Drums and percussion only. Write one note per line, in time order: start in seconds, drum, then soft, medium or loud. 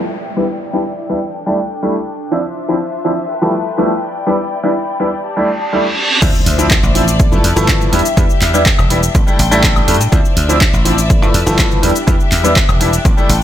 6.22 kick loud
6.22 closed hi-hat medium
6.22 crash loud
6.22 cabasa medium
6.35 cabasa soft
6.46 open hi-hat loud
6.59 closed hi-hat medium
6.59 cabasa medium
6.71 kick loud
6.71 clap loud
6.71 closed hi-hat soft
6.71 cabasa medium
6.83 cabasa soft
6.95 open hi-hat loud
7.08 closed hi-hat medium
7.08 cabasa medium
7.20 kick loud
7.20 closed hi-hat medium
7.20 cabasa medium
7.32 cabasa soft
7.44 open hi-hat loud
7.57 closed hi-hat medium
7.57 cabasa medium
7.68 kick loud
7.68 clap loud
7.68 closed hi-hat medium
7.68 cabasa medium
7.81 cabasa soft
7.93 open hi-hat loud
7.99 closed hi-hat medium
8.05 closed hi-hat medium
8.05 cabasa medium
8.17 kick loud
8.17 closed hi-hat medium
8.17 cabasa medium
8.30 cabasa soft
8.42 clap medium
8.42 open hi-hat loud
8.54 closed hi-hat medium
8.54 cabasa medium
8.66 kick loud
8.66 clap loud
8.66 cabasa medium
8.79 cabasa soft
8.79 high woodblock medium
8.90 open hi-hat loud
9.03 closed hi-hat medium
9.03 cabasa medium
9.15 kick loud
9.15 closed hi-hat medium
9.15 cabasa medium
9.28 cabasa soft
9.39 open hi-hat loud
9.52 closed hi-hat medium
9.52 cabasa medium
9.64 kick loud
9.64 clap loud
9.64 closed hi-hat medium
9.64 cabasa medium
9.76 cabasa soft
9.76 high woodblock medium
9.88 open hi-hat loud
9.94 closed hi-hat medium
10.01 closed hi-hat medium
10.01 cabasa medium
10.12 kick loud
10.12 closed hi-hat medium
10.12 cabasa medium
10.25 cabasa soft
10.37 open hi-hat loud
10.49 closed hi-hat medium
10.49 cabasa medium
10.61 kick loud
10.61 clap loud
10.61 closed hi-hat soft
10.61 cabasa medium
10.74 cabasa soft
10.85 open hi-hat loud
10.98 closed hi-hat medium
10.98 cabasa medium
11.10 kick loud
11.10 closed hi-hat medium
11.10 cabasa medium
11.23 cabasa soft
11.34 open hi-hat loud
11.47 closed hi-hat medium
11.47 cabasa medium
11.59 kick loud
11.59 clap loud
11.59 closed hi-hat medium
11.59 cabasa medium
11.72 cabasa soft
11.83 open hi-hat loud
11.89 closed hi-hat medium
11.96 closed hi-hat medium
11.96 cabasa medium
12.07 kick loud
12.07 closed hi-hat medium
12.07 cabasa medium
12.20 cabasa soft
12.32 clap medium
12.32 open hi-hat loud
12.45 closed hi-hat medium
12.45 cabasa medium
12.56 kick loud
12.56 clap loud
12.56 closed hi-hat soft
12.56 cabasa medium
12.69 cabasa soft
12.69 high woodblock medium
12.81 open hi-hat loud
12.93 closed hi-hat medium
12.93 cabasa medium
13.05 kick loud
13.05 closed hi-hat medium
13.05 cabasa medium
13.18 cabasa soft
13.29 open hi-hat loud